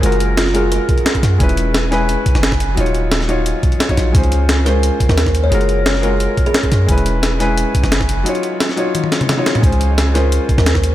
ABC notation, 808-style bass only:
X:1
M:4/4
L:1/16
Q:1/4=175
K:Db
V:1 name="808-style bass" clef=bass
G,,,8- G,,, z4 z G,,2 | =E,,,8- E,,, z2 G,,,4- G,,, | E,,,8- E,,, z4 z B,,,2 | D,,8- D,, z2 E,,4- E,, |
G,,,8- G,,, z4 z G,,2 | =E,,,8- E,,, z2 G,,,4- G,,, | z16 | D,,8- D,, z2 E,,4- E,, |]